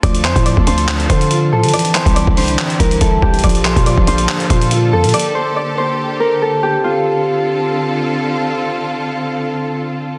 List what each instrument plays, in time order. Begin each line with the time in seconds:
0.03 808-style bass D2, string section D3 C4 F4 A4, grand piano F3, harp D5, kick, closed hi-hat
0.15 closed hi-hat
0.24 808-style bass F2, grand piano F3, harp C5, clap, closed hi-hat
0.36 808-style bass A2, kick, closed hi-hat
0.46 grand piano F3, harp D5, closed hi-hat
0.57 808-style bass D2, kick
0.67 808-style bass D2, grand piano D4, harp C5, closed hi-hat
0.78 closed hi-hat
0.88 grand piano F3, clap, closed hi-hat
1.00 closed hi-hat
1.09 808-style bass D3, grand piano F3, harp C5, kick, closed hi-hat
1.21 closed hi-hat
1.31 grand piano F4, closed hi-hat
1.52 808-style bass A2, grand piano F3, harp A4
1.63 808-style bass D3, closed hi-hat
1.69 closed hi-hat
1.73 grand piano E3, string section C4 E4 G4, harp D5, closed hi-hat
1.79 closed hi-hat
1.85 closed hi-hat
1.95 grand piano E3, harp C5, clap, closed hi-hat
2.06 808-style bass C2, kick, closed hi-hat
2.16 grand piano E3, harp D5, closed hi-hat
2.27 808-style bass C2, kick
2.37 grand piano D4, harp C5, open hi-hat
2.48 closed hi-hat
2.58 grand piano E3, clap, closed hi-hat
2.70 closed hi-hat
2.80 808-style bass C2, grand piano E3, harp A#4, kick, closed hi-hat
2.91 closed hi-hat
3.01 808-style bass C2, grand piano E4, harp A4, kick, closed hi-hat
3.22 808-style bass C2, grand piano E3, harp G4, kick
3.34 closed hi-hat
3.39 closed hi-hat
3.44 808-style bass A#1, grand piano F3, string section A#3 F4 A4, harp D5, kick, closed hi-hat
3.49 closed hi-hat
3.55 closed hi-hat
3.65 grand piano F3, harp C5, clap, closed hi-hat
3.76 808-style bass A#2, kick, closed hi-hat
3.86 grand piano F3, harp D5, closed hi-hat
3.98 808-style bass A#1, kick
4.07 808-style bass A#1, grand piano D4, harp C5, closed hi-hat
4.18 closed hi-hat
4.29 grand piano F3, clap, closed hi-hat
4.40 closed hi-hat
4.50 808-style bass A#2, harp C5, kick, closed hi-hat
4.61 closed hi-hat
4.71 grand piano F4, closed hi-hat
4.92 808-style bass F2, grand piano F3, harp A4
5.04 808-style bass A#2, closed hi-hat
5.09 closed hi-hat
5.14 string section G4, harp D5, closed hi-hat
5.19 closed hi-hat
5.35 harp C5
5.56 harp D5
5.78 harp C5
6.20 harp A#4
6.42 harp A4
6.63 harp G4
6.84 string section D3 C4 F4 A4, harp F4